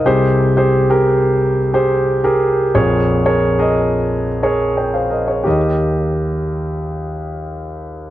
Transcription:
<<
  \new Staff \with { instrumentName = "Grand piano" } { \time 4/4 \key aes \major \tempo 4 = 89 << { <bes' ees''>16 r2. r8. | r2. <des'' g''>16 <c'' f''>16 <bes' ees''>16 <aes' des''>16~ | <aes' des''>16 r2. r8. | } \\ { <g' aes' c''>8 r16 <g' aes' c''>8 <g' aes' bes'>4 r16 <g' aes' c''>8 r16 <g' aes' bes'>8 r16 | <aes' bes' des''>8 r16 <aes' bes' des''>8 <aes' bes' ees''>4 r16 <aes' bes' des''>8 r4 | <g' bes' ees''>1 | } >> }
  \new Staff \with { instrumentName = "Grand piano" } { \clef bass \time 4/4 \key aes \major <c, c>1 | <bes,, f,>1 | ees,1 | }
>>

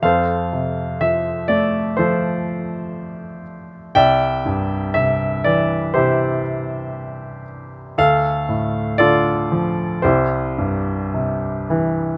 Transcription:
<<
  \new Staff \with { instrumentName = "Grand piano" } { \time 4/4 \key c \major \tempo 4 = 60 << { f''4 e''8 d''8 c''4. r8 | g''4 e''8 d''8 c''4. r8 | f''4 d''4 c''4. r8 | } \\ { <a' c''>2 <f' a'>2 | <d'' e''>2 <e' g'>2 | a'4 <f' a'>4 <e' g'>2 | } >> }
  \new Staff \with { instrumentName = "Grand piano" } { \clef bass \time 4/4 \key c \major f,8 c8 f8 a8 f2 | c,8 g,8 c8 e8 c2 | d,8 a,8 d8 f8 c,8 g,8 c8 e8 | }
>>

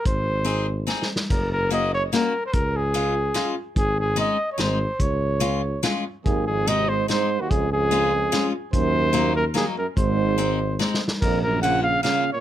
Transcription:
<<
  \new Staff \with { instrumentName = "Trumpet" } { \time 3/4 \key des \major \tempo 4 = 145 c''2 r4 | bes'8 bes'8 ees''8 des''8 bes'8. c''16 | bes'8 aes'2 r8 | aes'8 aes'8 \tuplet 3/2 { ees''4~ ees''16 des''16 } c''4 |
des''2 r4 | aes'8 aes'8 ees''8 c''8 c''8. ges'16 | aes'8 aes'2 r8 | c''4. bes'8 aes'8 bes'8 |
c''2 r4 | bes'8 bes'8 ges''8 f''8 f''8. des''16 | }
  \new Staff \with { instrumentName = "Steel-string acoustic guitar" } { \time 3/4 \key des \major r4 <c' ees' aes'>8 r8 <c' ees' aes'>8 r8 | r4 <bes des' ges'>8 r8 <bes des' ges'>8 r8 | r4 <aes des' f'>8 r8 <aes des' f'>8 r8 | r4 <aes des' ees'>8 r8 <aes c' ees'>8 r8 |
r4 <aes des' f'>8 r8 <aes des' f'>8 r8 | r4 <aes c' ees'>8 r8 <aes c' ees'>8 r8 | r4 <aes des' f'>8 r8 <aes des' f'>8 r8 | r4 <ges bes ees'>8 r8 <ges bes ees'>8 r8 |
r4 <aes c' ees'>8 r8 <aes c' ees'>8 r8 | r4 <bes des' f'>8 r8 <bes des' f'>8 r8 | }
  \new Staff \with { instrumentName = "Euphonium" } { \clef bass \time 3/4 \key des \major r2. | r2. | r2. | r2. |
r2. | ees,8 f,8 c8 aes,8 aes,8. ees,16 | f,8 f,2 r8 | ges,4. ges,8 ees,8 ges,8 |
aes,2 r4 | f,8 ges,8 des8 des8 des8. bes,16 | }
  \new Staff \with { instrumentName = "Tuba" } { \clef bass \time 3/4 \key des \major aes,,2. | ges,,2. | des,2. | aes,,2 aes,,4 |
des,2. | aes,,2. | des,2. | ees,2. |
aes,,2. | bes,,2. | }
  \new DrumStaff \with { instrumentName = "Drums" } \drummode { \time 3/4 <hh bd>4 hh4 \tuplet 3/2 { sn8 sn8 sn8 } | <cymc hh bd>4 hh4 <hh sn>4 | <hh bd>4 hh4 <hh sn>4 | <hh bd>4 hh4 <hh sn>4 |
<hh bd>4 hh4 <hh sn>4 | <hh bd>4 hh4 <hh sn>4 | <hh bd>4 hh4 <hh sn>4 | <hh bd>4 hh4 <hh sn>4 |
<hh bd>4 hh4 \tuplet 3/2 { sn8 sn8 sn8 } | <cymc hh bd>4 hh4 <hh sn>4 | }
>>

